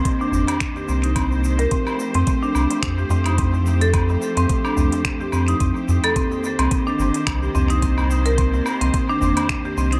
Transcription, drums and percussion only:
0.05 kick, closed hi-hat, shaker
0.21 shaker
0.32 darbuka dum, shaker
0.47 closed hi-hat, darbuka tek, low woodblock, shaker
0.60 finger snap, kick, closed hi-hat, shaker
0.76 darbuka tek, shaker
0.89 darbuka ka, shaker
1.04 closed hi-hat, shaker
1.16 kick, closed hi-hat, low woodblock, shaker
1.32 shaker
1.44 darbuka tek, shaker
1.59 closed hi-hat, darbuka tek, shaker
1.71 kick, closed hi-hat, shaker
1.87 darbuka ka, low woodblock, shaker
1.99 darbuka ka, shaker
2.14 closed hi-hat, shaker
2.27 kick, closed hi-hat, shaker
2.43 shaker
2.55 low woodblock, shaker
2.70 closed hi-hat, darbuka ka, darbuka tek, shaker
2.83 finger snap, kick, closed hi-hat, shaker
2.98 shaker
3.10 darbuka ka, darbuka tek, darbuka dum, shaker
3.26 closed hi-hat, low woodblock, shaker
3.38 kick, closed hi-hat, shaker
3.54 shaker
3.66 shaker
3.81 closed hi-hat, darbuka ka, shaker
3.94 kick, closed hi-hat, low woodblock, shaker
4.09 darbuka ka, darbuka tek, shaker
4.21 darbuka ka, shaker
4.37 closed hi-hat, shaker
4.49 kick, closed hi-hat, shaker
4.65 low woodblock, shaker
4.77 darbuka dum, shaker
4.92 closed hi-hat, darbuka ka, darbuka tek, shaker
5.05 finger snap, kick, closed hi-hat, shaker
5.21 darbuka tek, shaker
5.32 darbuka ka, low woodblock, shaker
5.48 closed hi-hat, shaker
5.60 kick, closed hi-hat, shaker
5.76 shaker
5.89 darbuka tek, darbuka dum, shaker
6.04 closed hi-hat, darbuka tek, low woodblock, shaker
6.16 kick, closed hi-hat, shaker
6.32 darbuka ka, shaker
6.44 darbuka ka, shaker
6.59 closed hi-hat, low woodblock, shaker
6.71 kick, closed hi-hat, shaker
6.87 shaker
6.99 shaker
7.14 closed hi-hat, darbuka ka, darbuka tek, shaker
7.27 finger snap, kick, closed hi-hat, low woodblock, shaker
7.43 shaker
7.55 darbuka ka, darbuka tek, darbuka dum, shaker
7.70 closed hi-hat, shaker
7.82 kick, closed hi-hat, shaker
7.98 low woodblock, shaker
8.11 shaker
8.26 closed hi-hat, darbuka ka, shaker
8.38 kick, closed hi-hat, shaker
8.54 darbuka ka, darbuka tek, shaker
8.65 darbuka ka, low woodblock, shaker
8.81 closed hi-hat, shaker
8.94 kick, closed hi-hat, shaker
9.10 shaker
9.21 darbuka dum, shaker
9.37 closed hi-hat, darbuka tek, low woodblock, shaker
9.49 finger snap, kick, closed hi-hat, shaker
9.65 darbuka tek, shaker
9.77 darbuka ka, shaker
9.92 closed hi-hat, shaker

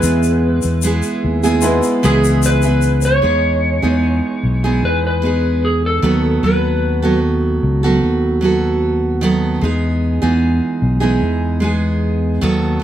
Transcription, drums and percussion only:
0.03 shaker
0.23 shaker
0.62 shaker
0.82 shaker
1.03 shaker
1.44 shaker
1.61 shaker
1.83 shaker
2.04 shaker
2.24 shaker
2.43 shaker
2.62 shaker
2.82 shaker
3.02 shaker

